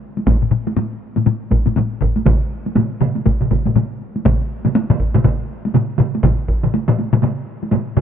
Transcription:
0.17 taiko high soft
0.26 taiko medium
0.26 taiko low-mid medium
0.26 taiko high medium
0.42 taiko low-mid medium
0.51 taiko low-mid medium
0.67 taiko high medium
0.77 taiko low-mid medium
0.77 taiko high medium
1.16 taiko low-mid medium
1.16 taiko high medium
1.26 taiko low-mid medium
1.26 taiko high medium
1.51 taiko medium
1.51 taiko low-mid medium
1.51 taiko high soft
1.66 taiko low-mid medium
1.66 taiko high medium
1.76 taiko low-mid medium
1.76 taiko high medium
2.01 taiko medium
2.01 taiko low-mid medium
2.16 taiko high medium
2.26 taiko medium
2.26 taiko low-mid medium
2.26 taiko mid medium
2.26 taiko high medium
2.66 taiko high soft
2.76 taiko low-mid medium
2.76 taiko mid medium
2.76 taiko high medium
3.01 taiko low-mid medium
3.01 taiko mid loud
3.16 taiko high soft
3.26 taiko medium
3.26 taiko low-mid medium
3.26 taiko mid medium
3.26 taiko high medium
3.41 taiko low-mid medium
3.41 taiko mid medium
3.51 taiko medium
3.51 taiko low-mid medium
3.51 taiko mid medium
3.51 taiko high soft
3.66 taiko low-mid medium
3.66 taiko mid medium
3.66 taiko high soft
3.76 taiko low-mid medium
3.76 taiko mid medium
3.76 taiko high medium
4.16 taiko high soft
4.25 taiko loud
4.25 taiko low-mid loud
4.25 taiko mid medium
4.25 taiko high medium
4.65 taiko low-mid medium
4.65 taiko mid medium
4.65 taiko high medium
4.75 taiko high medium
4.90 taiko low-mid medium
4.90 taiko mid loud
5.00 taiko medium
5.14 taiko low-mid loud
5.14 taiko mid medium
5.14 taiko high medium
5.24 taiko medium
5.24 taiko low-mid loud
5.24 taiko mid loud
5.24 taiko high medium
5.65 taiko high medium
5.74 taiko low-mid loud
5.74 taiko mid medium
5.74 taiko high medium
5.99 taiko low-mid medium
5.99 taiko mid loud
6.15 taiko high medium
6.23 taiko medium
6.23 taiko low-mid loud
6.23 taiko mid loud
6.23 taiko high medium
6.48 taiko medium
6.63 taiko low-mid medium
6.63 taiko mid medium
6.74 taiko high medium
6.88 taiko low-mid loud
6.88 taiko mid loud
6.99 taiko high medium
7.13 taiko low-mid loud
7.13 taiko mid medium
7.13 taiko high soft
7.23 taiko low-mid loud
7.23 taiko mid loud
7.23 taiko high medium
7.63 taiko high soft
7.71 taiko low-mid loud
7.71 taiko mid medium
7.71 taiko high medium
7.97 taiko low-mid loud
7.97 taiko mid medium

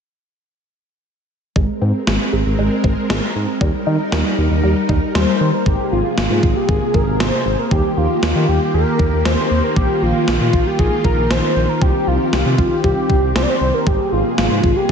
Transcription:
1.56 1.66 G#1 loud
1.56 1.72 G#3 medium
1.56 3.59 G#3 medium
1.56 3.59 C4 medium
1.56 3.59 A#4 medium
1.56 kick loud
1.82 1.92 G#2 medium
1.82 1.98 C4 medium
2.07 2.18 G#1 loud
2.07 2.23 G#3 medium
2.07 snare loud
2.33 2.43 G#1 medium
2.33 2.49 G#3 medium
2.46 2.56 G#1 medium
2.59 2.69 G#1 loud
2.59 2.75 G#3 medium
2.84 2.95 G#1 loud
2.84 3.00 C4 medium
2.84 kick medium
3.10 3.20 G#1 medium
3.10 3.26 G#3 medium
3.10 snare loud
3.36 3.46 G#2 loud
3.61 3.72 D#2 loud
3.61 3.77 G3 medium
3.61 5.64 G3 medium
3.61 5.64 D#4 medium
3.61 5.64 A#4 medium
3.61 kick loud
3.87 3.97 D#3 loud
3.87 4.03 D#4 medium
4.12 4.23 D#2 loud
4.12 4.29 G3 medium
4.12 snare loud
4.38 4.49 D#2 medium
4.38 4.54 G3 medium
4.51 4.61 D#2 loud
4.64 4.74 D#2 loud
4.64 4.80 G3 medium
4.89 5.00 D#2 medium
4.89 5.05 D#4 medium
4.89 kick medium
5.15 5.25 D#2 loud
5.15 5.31 G3 medium
5.15 5.55 C5 medium
5.15 snare loud
5.41 5.51 D#3 loud
5.54 5.68 A#4 medium
5.66 5.77 G#1 loud
5.66 7.69 C3 medium
5.66 7.69 A#3 medium
5.66 5.92 G4 medium
5.66 7.69 G#4 medium
5.66 kick loud
5.92 6.02 G#1 loud
5.92 6.16 F4 medium
6.18 6.28 G#1 loud
6.18 6.58 F4 medium
6.18 snare loud
6.30 6.41 G#2 medium
6.43 6.54 G#1 medium
6.43 kick medium
6.56 6.71 G4 medium
6.69 6.79 G#1 loud
6.69 6.96 G#4 medium
6.69 kick medium
6.94 7.05 G#1 medium
6.94 7.22 A#4 medium
6.94 kick medium
7.07 7.18 G#1 medium
7.20 7.31 G#1 loud
7.20 7.60 C5 medium
7.20 snare loud
7.46 7.56 G#1 loud
7.59 7.71 A#4 medium
7.71 7.82 D#2 loud
7.71 13.83 D#3 medium
7.71 11.78 A#3 medium
7.71 9.74 G4 medium
7.71 7.99 G4 medium
7.71 kick loud
7.97 8.08 D#2 loud
7.97 8.22 F4 medium
8.23 8.33 D#2 loud
8.23 8.50 F4 medium
8.23 snare loud
8.36 8.46 D#3 loud
8.48 8.59 D#2 loud
8.48 8.74 G4 medium
8.74 8.84 D#2 loud
8.74 9.27 A#4 loud
8.99 9.10 D#2 loud
8.99 kick medium
9.12 9.23 D#2 loud
9.25 9.36 D#2 loud
9.25 9.65 C5 medium
9.25 snare loud
9.51 9.61 D#2 loud
9.64 9.76 A#4 medium
9.76 9.87 A#1 loud
9.76 11.80 F4 medium
9.76 10.04 G4 loud
9.76 kick loud
10.02 10.13 A#1 loud
10.02 10.27 F4 medium
10.28 10.38 A#1 loud
10.28 10.68 F4 medium
10.28 snare loud
10.41 10.51 A#2 medium
10.53 10.64 A#1 medium
10.53 kick medium
10.66 10.81 G4 medium
10.79 10.89 A#1 loud
10.79 11.04 G#4 medium
10.79 kick medium
11.04 11.15 A#1 medium
11.04 11.32 A#4 medium
11.04 kick medium
11.18 11.28 A#1 medium
11.30 11.41 A#1 loud
11.30 11.70 C5 loud
11.30 snare loud
11.56 11.66 A#1 loud
11.69 11.83 A#4 medium
11.82 11.92 C2 loud
11.82 13.85 C4 medium
11.82 13.85 G4 medium
11.82 12.09 G4 loud
11.82 kick loud
12.07 12.18 C2 loud
12.07 12.32 F4 medium
12.33 12.43 C2 medium
12.33 12.81 F4 medium
12.33 snare loud
12.46 12.56 C3 medium
12.58 12.69 C2 medium
12.58 kick medium
12.84 12.95 C2 loud
12.84 13.37 G4 loud
12.84 kick medium
13.10 13.20 C2 loud
13.10 kick medium
13.23 13.33 C2 medium
13.35 13.46 C2 loud
13.35 13.44 C5 medium
13.35 snare loud
13.43 13.51 D5 medium
13.49 13.76 C5 medium
13.61 13.72 C2 medium
13.74 13.88 A#4 medium
13.87 13.97 G#1 loud
13.87 14.92 C3 medium
13.87 14.92 A#3 medium
13.87 14.12 G4 loud
13.87 14.92 G#4 medium
13.87 kick loud
14.12 14.23 G#1 loud
14.12 14.36 F4 medium
14.38 14.48 G#1 loud
14.38 14.78 F4 medium
14.38 snare loud
14.51 14.61 G#2 medium
14.64 14.74 G#1 medium
14.64 kick medium
14.76 14.91 G4 medium

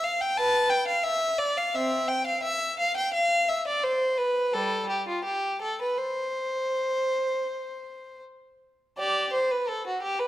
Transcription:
0.04 0.21 F5 medium
0.21 0.38 G5 medium
0.38 0.69 B4 medium
0.38 0.72 A5 medium
0.70 0.88 G5 medium
0.88 1.05 F5 medium
1.03 1.38 E5 medium
1.38 1.56 D5 medium
1.57 1.74 F5 medium
1.74 2.06 C4 medium
1.74 2.09 E5 medium
2.08 2.26 G5 medium
2.27 2.44 F5 medium
2.43 2.78 E5 medium
2.79 2.96 F5 medium
2.97 3.13 G5 medium
3.14 3.48 F5 medium
3.49 3.66 E5 medium
3.68 3.84 D5 medium
3.84 4.19 C5 medium
4.17 4.54 B4 medium
4.53 4.87 G3 medium
4.53 4.89 A4 medium
4.90 5.07 G4 medium
5.08 5.25 F4 medium
5.24 5.60 G4 medium
5.62 5.80 A4 medium
5.82 5.99 B4 medium
5.99 8.22 C5 medium
8.98 9.31 G4 medium
8.98 9.31 D5 medium
9.33 9.50 C5 medium
9.51 9.69 B4 medium
9.69 9.86 A4 medium
9.87 10.04 F#4 medium
10.02 10.20 G4 medium
10.20 10.28 B4 medium

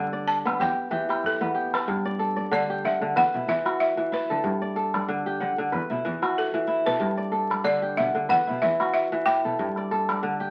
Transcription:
0.00 0.65 G2 medium
0.00 0.65 D3 medium
0.00 0.45 B3 medium
0.00 0.59 G4 medium
0.00 0.54 B4 medium
0.00 0.30 G5 medium
0.00 0.57 G5 medium
0.13 1.24 D5 medium
0.28 0.61 A5 medium
0.45 1.40 B3 medium
0.45 calabash click medium
0.60 0.68 E2 medium
0.60 0.91 G4 medium
0.60 1.20 G5 medium
0.60 calabash thump medium
0.60 calabash click soft
0.91 0.99 E2 medium
0.91 1.93 E3 medium
0.91 1.09 G4 medium
1.09 1.54 G4 medium
1.09 calabash click soft
1.24 1.71 A4 medium
1.24 calabash thump medium
1.24 calabash click soft
1.41 1.49 E2 medium
1.41 3.27 B3 medium
1.41 calabash click soft
1.54 2.69 G4 medium
1.74 2.55 B4 medium
1.74 calabash click medium
1.87 1.95 G2 medium
1.87 3.21 G2 medium
1.87 calabash thump medium
2.05 2.36 D5 medium
2.19 3.51 A4 medium
2.36 2.46 G2 medium
2.36 3.47 D5 medium
2.51 3.00 D3 medium
2.51 2.85 D5 medium
2.70 3.71 G4 medium
2.84 2.92 D3 medium
2.84 3.17 E5 medium
2.84 3.81 F#5 medium
3.01 3.21 D3 medium
3.16 3.24 E2 medium
3.16 4.39 B4 medium
3.16 3.49 F#5 loud
3.16 calabash thump medium
3.16 calabash click soft
3.34 3.42 B2 medium
3.34 4.12 E4 medium
3.48 3.56 E2 medium
3.48 3.96 E3 medium
3.48 3.79 E5 medium
3.65 4.50 F#4 medium
3.65 calabash click soft
3.80 4.13 E5 medium
3.97 4.49 E3 medium
4.12 5.69 E4 medium
4.12 4.73 B4 medium
4.30 4.38 D3 medium
4.30 4.76 A4 medium
4.44 5.78 G2 medium
4.44 4.53 G2 medium
4.44 calabash thump medium
4.62 4.94 D5 medium
4.76 6.08 A4 medium
4.94 5.03 G2 medium
4.94 6.05 D5 medium
4.94 calabash click soft
5.08 5.57 D3 medium
5.26 6.28 G4 medium
5.40 5.49 D3 medium
5.40 6.37 F#5 medium
5.58 5.78 D3 medium
5.72 5.81 E2 medium
5.72 6.95 B4 medium
5.72 calabash thump medium
5.72 calabash click soft
5.90 5.99 B2 medium
5.90 6.67 E4 medium
6.05 6.14 E2 medium
6.05 6.53 E3 medium
6.22 7.06 F#4 medium
6.22 calabash click soft
6.38 6.89 A4 medium
6.54 7.06 E3 medium
6.67 8.24 E4 medium
6.86 6.95 B2 medium
6.86 7.31 A4 medium
6.86 7.68 B4 medium
7.00 8.35 G2 medium
7.00 7.09 G2 medium
7.00 calabash thump medium
7.17 7.50 D5 medium
7.32 8.63 A4 medium
7.50 7.59 G2 medium
7.50 8.61 D5 medium
7.50 calabash click soft
7.64 8.13 D3 medium
7.64 7.98 D5 medium
7.82 8.86 G4 medium
7.97 8.07 B2 medium
7.97 8.31 E5 medium
7.97 8.94 F#5 medium
8.15 8.35 D3 medium
8.29 8.39 E2 medium
8.29 9.52 B4 medium
8.29 8.63 F#5 loud
8.29 calabash thump medium
8.29 calabash click soft
8.47 8.57 B2 medium
8.47 9.27 E4 medium
8.62 8.71 E2 medium
8.62 9.11 E3 medium
8.62 8.92 E5 medium
8.80 9.65 F#4 medium
8.80 calabash click soft
8.94 9.27 E5 medium
9.12 9.64 E3 medium
9.26 10.50 E4 medium
9.26 9.86 G5 medium
9.45 9.53 B2 medium
9.45 9.91 A4 medium
9.59 10.50 G2 medium
9.59 9.68 G2 loud
9.59 calabash thump medium
9.76 10.09 D5 medium
9.76 calabash click soft
9.91 10.50 A4 medium
9.91 calabash click soft
10.09 10.18 G2 medium
10.09 10.50 D5 medium
10.09 calabash click soft
10.23 10.50 D3 medium
10.40 10.50 G4 medium

